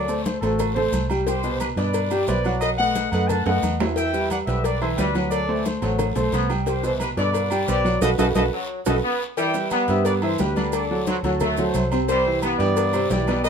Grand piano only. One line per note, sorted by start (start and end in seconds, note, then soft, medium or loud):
0.08 0.36 A3 medium
0.08 0.36 A4 medium
0.08 0.36 C5 medium
0.43 0.70 A3 medium
0.43 0.70 A4 medium
0.43 0.71 C5 medium
0.76 1.04 A3 medium
0.76 1.04 A4 medium
0.76 1.04 C5 medium
1.10 1.24 G3 loud
1.10 1.24 G4 medium
1.10 1.24 G5 medium
1.28 1.41 G3 medium
1.28 1.41 G4 medium
1.28 1.41 G5 medium
1.44 1.71 B2 medium
1.44 1.72 B4 medium
1.44 1.72 C5 medium
1.77 2.05 B2 medium
1.77 2.05 B4 medium
1.77 2.05 D5 medium
2.11 2.25 G3 loud
2.11 2.25 G4 medium
2.11 2.25 G5 medium
2.28 2.42 B3 medium
2.28 2.42 B4 medium
2.28 2.42 C5 medium
2.46 2.73 F#3 medium
2.46 2.73 F#4 medium
2.46 2.73 F#5 medium
2.79 3.07 A3 medium
2.79 3.07 A4 medium
2.79 3.07 B4 medium
3.13 3.41 A3 medium
3.13 3.41 A4 medium
3.13 3.41 B4 medium
3.46 3.74 A3 medium
3.46 3.74 A4 medium
3.46 3.74 B4 medium
3.80 3.94 E3 medium
3.80 3.94 E4 medium
3.80 3.94 E5 medium
3.97 4.11 E3 medium
3.97 4.11 E4 medium
3.97 4.11 E5 medium
4.13 4.41 G3 medium
4.13 4.41 G4 medium
4.13 4.41 B4 medium
4.48 4.76 G3 medium
4.48 4.76 G4 medium
4.48 4.76 B4 medium
4.81 4.95 E3 loud
4.81 4.95 E4 medium
4.81 4.96 E5 medium
4.98 5.12 G3 medium
4.98 5.12 G4 medium
4.98 5.13 B4 medium
5.15 5.43 F#3 medium
5.15 5.43 F#4 medium
5.15 5.43 F#5 medium
5.49 5.76 A3 medium
5.49 5.77 A4 medium
5.49 5.77 C5 medium
5.82 6.10 A3 medium
5.82 6.10 A4 medium
5.82 6.11 C5 medium
6.16 6.44 A3 medium
6.16 6.44 A4 medium
6.16 6.44 C5 medium
6.50 6.64 G3 medium
6.50 6.64 G4 medium
6.50 6.64 G5 medium
6.66 6.80 G3 medium
6.66 6.80 G4 medium
6.66 6.81 G5 medium
6.83 7.11 B2 medium
6.83 7.11 B4 medium
6.83 7.12 C5 medium
7.17 7.45 B2 medium
7.17 7.45 B4 medium
7.17 7.46 D5 medium
7.51 7.65 G3 loud
7.51 7.65 G4 loud
7.51 7.66 G5 medium
7.68 7.82 B3 medium
7.68 7.82 B4 medium
7.68 7.82 C5 medium
7.85 7.99 F#3 medium
7.85 7.99 F#4 loud
7.85 7.99 F#5 medium
8.02 8.13 F#4 loud
8.02 8.13 A4 medium
8.02 8.13 B4 medium
8.19 8.30 F#4 loud
8.19 8.30 A4 loud
8.19 8.30 B4 loud
8.36 8.47 F#4 loud
8.36 8.47 A4 loud
8.36 8.47 B4 loud
8.86 8.98 F#4 loud
8.86 8.97 A4 loud
8.86 8.97 B4 loud
9.37 9.51 E3 medium
9.37 9.51 E4 medium
9.37 9.52 E5 medium
9.54 9.82 G3 medium
9.54 9.82 G4 medium
9.54 9.83 B4 medium
9.89 10.17 G3 medium
9.89 10.17 G4 medium
9.89 10.17 B4 medium
10.22 10.36 E3 loud
10.22 10.36 E4 medium
10.22 10.37 E5 loud
10.40 10.53 G3 medium
10.40 10.54 G4 medium
10.40 10.54 B4 medium
10.56 10.84 D3 medium
10.56 10.84 D4 medium
10.56 10.84 D5 medium
10.91 11.18 F#3 medium
10.91 11.18 F#4 medium
10.91 11.19 A4 medium
11.24 11.52 F#3 medium
11.24 11.52 F#4 medium
11.24 11.52 A4 medium
11.58 11.86 F#3 medium
11.58 11.86 F#4 medium
11.58 11.86 A4 medium
11.92 12.06 C3 medium
11.92 12.06 C4 loud
11.92 12.06 C5 medium
12.09 12.23 C3 medium
12.09 12.23 C4 medium
12.09 12.23 C5 medium
12.26 12.54 E3 medium
12.26 12.54 E4 medium
12.26 12.54 G4 medium
12.60 12.87 E3 medium
12.60 12.87 E4 medium
12.60 12.88 G4 medium
12.94 13.08 C3 loud
12.94 13.08 C4 medium
12.94 13.08 C5 medium
13.11 13.25 E3 medium
13.11 13.25 E4 medium
13.11 13.25 G4 medium
13.28 13.49 B2 medium
13.28 13.49 B3 medium
13.28 13.49 B4 medium